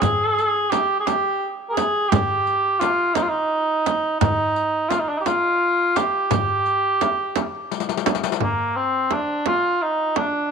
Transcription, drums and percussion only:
0.02 riq, frame drum, darbuka dum
0.39 riq
0.72 riq, darbuka tek, frame drum
1.07 riq, darbuka tek, frame drum
1.77 riq, darbuka tek, frame drum
2.12 riq, frame drum, darbuka dum
2.47 riq
2.81 riq, darbuka tek, frame drum
3.15 riq, darbuka tek, frame drum
3.86 riq, frame drum
4.21 riq, frame drum, darbuka dum
4.56 riq
4.91 riq, darbuka tek, frame drum
5.26 riq, darbuka tek, frame drum
5.96 riq, darbuka tek, frame drum
6.31 riq, frame drum, darbuka dum
6.66 riq, darbuka ka
7.01 riq, darbuka tek, frame drum
7.36 riq, darbuka tek, frame drum
7.71 riq, darbuka tek
7.80 riq, darbuka ka
7.89 riq, darbuka tek
7.97 riq, darbuka ka
8.06 riq, darbuka tek, frame drum
8.15 riq, darbuka ka
8.24 riq, darbuka tek
8.32 riq, darbuka ka
8.40 frame drum, darbuka dum
9.11 darbuka tek, frame drum
9.46 darbuka tek, frame drum
10.16 darbuka tek, frame drum
10.35 darbuka ka

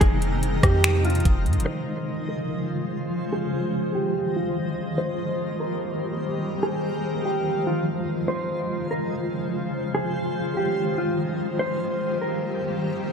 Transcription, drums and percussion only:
0.01 kick, closed hi-hat
0.22 closed hi-hat
0.43 closed hi-hat
0.63 kick, cross-stick, closed hi-hat
0.84 finger snap, closed hi-hat
1.05 closed hi-hat
1.10 closed hi-hat
1.15 closed hi-hat
1.20 closed hi-hat
1.25 kick, closed hi-hat
1.46 closed hi-hat
1.53 closed hi-hat
1.60 closed hi-hat

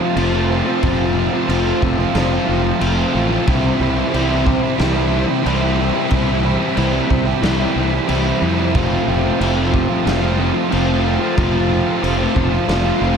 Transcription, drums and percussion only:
0.17 crash
0.83 kick, crash
1.50 crash
1.82 kick
2.15 snare, crash
2.81 crash
3.48 kick, crash
4.14 crash
4.47 kick
4.79 snare, crash
5.46 crash
6.10 kick, crash
6.77 crash
7.10 kick
7.43 snare, crash
8.09 crash
8.75 kick, crash
9.41 crash
9.74 kick
10.07 snare, crash
10.72 crash
11.38 kick, crash
12.04 crash
12.36 kick
12.69 snare, crash

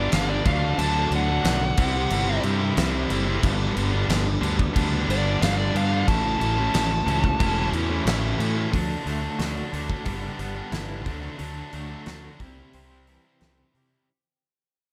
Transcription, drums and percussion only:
0.12 snare, crash
0.46 kick, crash
0.79 crash
1.12 crash
1.45 snare, crash
1.77 kick, crash
2.10 crash
2.43 crash
2.77 snare, crash
3.10 crash
3.43 kick, crash
3.77 crash
4.10 snare, crash
4.43 crash
4.59 kick
4.76 kick, crash
5.10 crash
5.42 snare, crash
5.76 crash
6.08 kick, crash
6.41 crash
6.74 snare, crash
7.08 crash
7.24 kick
7.40 kick, crash
7.73 crash
8.07 snare, crash
8.40 crash
8.73 kick, open hi-hat
9.07 open hi-hat
9.39 snare, open hi-hat
9.74 open hi-hat
9.90 kick
10.06 kick, open hi-hat
10.39 open hi-hat
10.72 snare, open hi-hat
11.06 kick, open hi-hat
11.39 open hi-hat
11.73 open hi-hat
12.06 snare, open hi-hat
12.40 kick, open hi-hat
12.73 open hi-hat
13.07 open hi-hat
13.41 snare, open hi-hat
13.75 open hi-hat

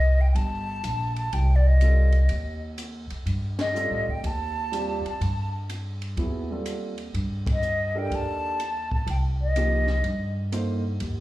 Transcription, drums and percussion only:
0.36 ride
0.84 hi-hat pedal, ride
1.16 ride
1.33 ride
1.81 hi-hat pedal, ride
2.12 ride
2.29 ride
2.78 hi-hat pedal, ride
3.10 ride
3.27 ride
3.59 snare, ride
3.76 hi-hat pedal
4.24 ride
4.73 hi-hat pedal, ride
5.06 ride
5.21 ride
5.69 hi-hat pedal, ride
6.02 ride
6.17 ride
6.66 hi-hat pedal, ride
6.98 ride
7.15 ride
7.47 kick, ride
7.62 hi-hat pedal
8.12 ride
8.60 hi-hat pedal, ride
8.91 kick
9.07 ride
9.56 hi-hat pedal, ride
9.87 snare
10.04 ride
10.52 hi-hat pedal, ride
11.00 ride

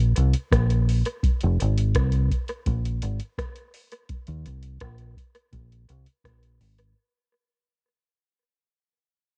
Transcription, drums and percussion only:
0.16 closed hi-hat
0.33 closed hi-hat
0.51 kick, cross-stick, closed hi-hat
0.70 closed hi-hat
0.89 open hi-hat
1.05 closed hi-hat
1.23 kick, closed hi-hat
1.41 closed hi-hat
1.60 closed hi-hat
1.78 closed hi-hat
1.95 kick, cross-stick, closed hi-hat
2.12 closed hi-hat
2.30 kick, closed hi-hat
2.48 closed hi-hat
2.66 kick, closed hi-hat
2.85 closed hi-hat
3.02 closed hi-hat
3.20 closed hi-hat
3.38 kick, cross-stick, closed hi-hat
3.56 closed hi-hat
3.74 open hi-hat
3.92 closed hi-hat
4.09 kick, closed hi-hat
4.27 closed hi-hat
4.46 closed hi-hat
4.63 closed hi-hat
4.80 kick, cross-stick, closed hi-hat
4.98 closed hi-hat
5.17 kick, closed hi-hat
5.35 closed hi-hat
5.53 kick, closed hi-hat
5.72 closed hi-hat
5.89 closed hi-hat
6.06 closed hi-hat
6.24 kick, cross-stick, closed hi-hat
6.43 closed hi-hat
6.61 open hi-hat
6.78 closed hi-hat

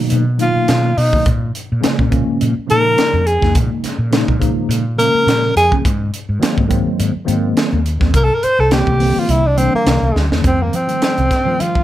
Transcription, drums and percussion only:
0.10 closed hi-hat
0.39 closed hi-hat
0.68 snare, closed hi-hat
0.98 open hi-hat
1.13 kick
1.26 kick, closed hi-hat
1.55 closed hi-hat
1.84 snare, closed hi-hat
1.99 kick
2.12 kick, closed hi-hat
2.41 closed hi-hat
2.70 closed hi-hat
2.98 snare, closed hi-hat
3.27 closed hi-hat
3.42 kick, snare
3.55 kick, closed hi-hat
3.84 snare, closed hi-hat
4.13 snare, closed hi-hat
4.28 kick
4.42 kick, closed hi-hat
4.71 closed hi-hat
4.99 closed hi-hat
5.28 snare, closed hi-hat
5.57 closed hi-hat
5.72 kick
5.85 kick, closed hi-hat
6.14 closed hi-hat
6.43 snare, closed hi-hat
6.58 kick
6.71 kick, closed hi-hat
7.00 closed hi-hat
7.28 closed hi-hat
7.57 snare, closed hi-hat
7.86 closed hi-hat
8.01 kick, snare
8.14 kick, closed hi-hat
8.43 closed hi-hat
8.71 snare, closed hi-hat
8.87 kick
9.00 open hi-hat
9.29 closed hi-hat
9.58 closed hi-hat
9.87 snare, closed hi-hat
10.16 snare
10.32 snare
10.44 kick, closed hi-hat
10.73 closed hi-hat
10.89 closed hi-hat
11.02 snare, closed hi-hat
11.18 closed hi-hat
11.31 kick, snare, closed hi-hat
11.60 closed hi-hat
11.75 kick

